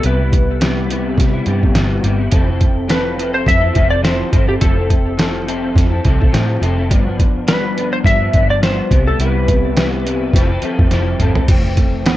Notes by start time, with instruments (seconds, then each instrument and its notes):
0.03 picked electric bass C2, clean electric guitar C3 G3 B3 E4, electric slide guitar B4, closed hi-hat
0.19 clean electric guitar G3 B3 E4
0.33 kick, closed hi-hat
0.60 clean electric guitar C3 G3 B3 E4, snare, closed hi-hat
0.89 clean electric guitar C3 G3 B3 E4, closed hi-hat
1.17 picked electric bass C3, kick, snare, closed hi-hat
1.33 clean electric guitar G3 B3 E4
1.46 picked electric bass G2, clean electric guitar C3 G3 B3 E4, closed hi-hat
1.63 kick
1.74 picked electric bass G1, clean electric guitar C3 G3 B3 E4, snare, closed hi-hat
2.03 picked electric bass G1, clean electric guitar C3 G3 B3 E4, closed hi-hat
2.18 clean electric guitar G3 B3 E4
2.31 picked electric bass F1, clean electric guitar F3 C4 E4 A4, kick, closed hi-hat
2.47 clean electric guitar C4 E4 A4
2.61 kick, closed hi-hat
2.88 clean electric guitar F3 C4 E4 A4, electric slide guitar B4, snare, closed hi-hat
3.17 clean electric guitar F3 C4 E4 A4, closed hi-hat
3.34 electric slide guitar C5
3.46 picked electric bass F2, electric slide guitar E5, kick, snare, closed hi-hat
3.60 clean electric guitar C4 E4 A4
3.73 picked electric bass F1, clean electric guitar F3 C4 E4 A4, kick, closed hi-hat
3.90 electric slide guitar D5
4.02 clean electric guitar F3 C4 E4 A4, electric slide guitar C5, snare, closed hi-hat
4.30 picked electric bass G1, clean electric guitar F3 C4 E4 A4, kick, closed hi-hat
4.47 clean electric guitar C4 E4 A4, electric slide guitar G4
4.60 picked electric bass F1, clean electric guitar F3 C4 E4 A4, electric slide guitar A4, kick, closed hi-hat
4.76 clean electric guitar C4 E4 A4
4.90 kick, closed hi-hat
5.17 clean electric guitar F3 C4 E4 A4, snare, closed hi-hat
5.46 clean electric guitar F3 C4 E4 A4, closed hi-hat
5.75 picked electric bass F2, kick, snare, closed hi-hat
5.90 clean electric guitar C4 E4 A4
6.04 picked electric bass C2, clean electric guitar F3 C4 E4 A4, kick, closed hi-hat
6.20 clean electric guitar C4 E4 A4, kick
6.32 picked electric bass A2, clean electric guitar F3 C4 E4 A4, snare, closed hi-hat
6.60 picked electric bass F1, clean electric guitar F3 C4 E4 A4, closed hi-hat
6.76 clean electric guitar C4 E4 A4
6.89 picked electric bass G1, clean electric guitar G2 F3 B3 D4, kick, closed hi-hat
7.05 clean electric guitar F3 B3 D4
7.19 kick, closed hi-hat
7.47 clean electric guitar G2 F3 B3 D4, electric slide guitar B4, snare, closed hi-hat
7.75 clean electric guitar G2 F3 B3 D4, closed hi-hat
7.93 electric slide guitar C5
8.04 picked electric bass G2, electric slide guitar E5, kick, snare, closed hi-hat
8.20 clean electric guitar F3 B3 D4
8.32 picked electric bass G1, clean electric guitar G2 F3 B3 D4, kick, closed hi-hat
8.50 electric slide guitar D5
8.61 clean electric guitar G2 F3 B3 D4, electric slide guitar C5, snare, closed hi-hat
8.90 picked electric bass C2, clean electric guitar C3 G3 B3 E4, kick, closed hi-hat
9.06 clean electric guitar G3 B3 E4, electric slide guitar A4
9.19 picked electric bass C2, clean electric guitar C3 G3 B3 E4, electric slide guitar B4, closed hi-hat
9.48 kick, closed hi-hat
9.76 clean electric guitar C3 G3 B3 E4, snare, closed hi-hat
10.05 clean electric guitar C3 G3 B3 E4, closed hi-hat
10.33 picked electric bass F1, clean electric guitar F3 C4 E4 A4, kick, snare, closed hi-hat
10.49 clean electric guitar C4 E4 A4
10.61 clean electric guitar F3 C4 E4 A4, muted picked electric bass stroke, closed hi-hat
10.79 picked electric bass F2, kick
10.90 picked electric bass F1, clean electric guitar F3 C4 E4 A4, snare, closed hi-hat
11.19 picked electric bass G1, clean electric guitar F3 C4 E4 A4, closed hi-hat, mid tom
11.34 clean electric guitar C4 E4 A4, floor tom
11.48 picked electric bass F1, clean electric guitar F2 E3 A3 C4, kick, closed hi-hat, crash
11.64 clean electric guitar E3 A3 C4
11.77 kick, closed hi-hat
12.05 clean electric guitar F2 E3 A3 C4, electric slide guitar B3, snare, closed hi-hat